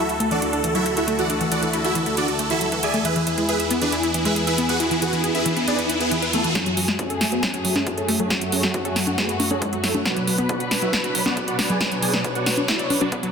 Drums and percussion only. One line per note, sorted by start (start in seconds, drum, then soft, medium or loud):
0.09 closed hi-hat soft
0.20 closed hi-hat medium
0.31 closed hi-hat soft
0.42 closed hi-hat medium
0.53 closed hi-hat soft
0.64 closed hi-hat medium
0.75 closed hi-hat soft
0.86 closed hi-hat medium
0.97 closed hi-hat soft
1.08 closed hi-hat medium
1.19 closed hi-hat soft
1.30 closed hi-hat medium
1.41 closed hi-hat soft
1.52 closed hi-hat medium
1.63 closed hi-hat soft
1.73 closed hi-hat medium
1.85 closed hi-hat soft
1.95 closed hi-hat medium
2.06 closed hi-hat soft
2.17 closed hi-hat medium
2.28 closed hi-hat soft
2.39 closed hi-hat medium
2.50 closed hi-hat soft
2.61 closed hi-hat medium
2.72 closed hi-hat soft
2.83 closed hi-hat medium
2.94 closed hi-hat soft
3.05 closed hi-hat medium
3.16 closed hi-hat soft
3.27 closed hi-hat medium
3.38 closed hi-hat soft
3.49 closed hi-hat medium
3.60 closed hi-hat soft
3.71 closed hi-hat medium
3.82 closed hi-hat soft
3.92 closed hi-hat medium
4.03 closed hi-hat soft
4.14 closed hi-hat medium
4.25 closed hi-hat soft
4.36 closed hi-hat medium
4.47 closed hi-hat soft
4.58 closed hi-hat medium
4.69 closed hi-hat soft
4.80 closed hi-hat medium
4.91 closed hi-hat soft
5.02 closed hi-hat medium
5.13 closed hi-hat soft
5.24 closed hi-hat medium
5.35 closed hi-hat soft
5.46 closed hi-hat medium
5.57 closed hi-hat soft
5.68 closed hi-hat medium
5.79 closed hi-hat soft
5.90 closed hi-hat medium
6.01 closed hi-hat soft
6.11 closed hi-hat medium
6.22 closed hi-hat soft
6.33 closed hi-hat medium
6.44 closed hi-hat soft
6.55 kick loud
6.55 snare soft
6.55 closed hi-hat medium
6.66 closed hi-hat soft
6.77 open hi-hat medium
6.88 snare soft
6.99 kick loud
6.99 closed hi-hat medium
7.10 closed hi-hat soft
7.21 snare soft
7.21 open hi-hat medium
7.32 closed hi-hat soft
7.43 kick loud
7.43 snare soft
7.43 closed hi-hat medium
7.54 closed hi-hat soft
7.65 open hi-hat loud
7.76 snare soft
7.76 high conga medium
7.87 kick loud
7.87 closed hi-hat medium
7.98 closed hi-hat soft
8.09 open hi-hat loud
8.20 closed hi-hat soft
8.30 kick loud
8.30 snare soft
8.30 closed hi-hat medium
8.41 closed hi-hat soft
8.52 open hi-hat loud
8.63 snare soft
8.74 kick loud
8.74 closed hi-hat medium
8.85 closed hi-hat soft
8.96 snare medium
8.96 open hi-hat loud
9.07 closed hi-hat soft
9.07 high conga medium
9.18 kick loud
9.18 snare medium
9.18 closed hi-hat medium
9.29 closed hi-hat soft
9.40 open hi-hat loud
9.40 high conga medium
9.51 closed hi-hat soft
9.51 high conga medium
9.62 kick loud
9.62 closed hi-hat medium
9.73 closed hi-hat soft
9.84 snare medium
9.84 open hi-hat loud
9.95 closed hi-hat soft
9.95 high conga medium
10.05 kick loud
10.05 snare medium
10.05 closed hi-hat medium
10.17 closed hi-hat soft
10.27 open hi-hat loud
10.38 closed hi-hat soft
10.49 kick loud
10.49 closed hi-hat medium
10.60 closed hi-hat soft
10.71 snare medium
10.71 open hi-hat loud
10.82 closed hi-hat soft
10.93 kick loud
10.93 snare medium
10.93 closed hi-hat medium
11.04 closed hi-hat soft
11.15 open hi-hat loud
11.26 snare medium
11.26 high conga medium
11.37 kick loud
11.37 closed hi-hat medium
11.48 closed hi-hat soft
11.59 snare medium
11.59 open hi-hat loud
11.70 closed hi-hat soft
11.81 kick loud
11.81 snare medium
11.81 closed hi-hat medium
11.92 closed hi-hat soft
12.03 open hi-hat loud
12.14 snare medium
12.14 closed hi-hat soft
12.24 kick loud
12.24 closed hi-hat medium
12.35 closed hi-hat soft
12.46 snare medium
12.46 open hi-hat loud
12.57 closed hi-hat soft
12.57 high conga medium
12.68 kick loud
12.68 snare medium
12.68 closed hi-hat medium
12.79 closed hi-hat soft
12.90 open hi-hat loud
12.90 high conga medium
13.01 closed hi-hat soft
13.01 high conga medium
13.12 kick loud
13.12 closed hi-hat medium
13.23 closed hi-hat soft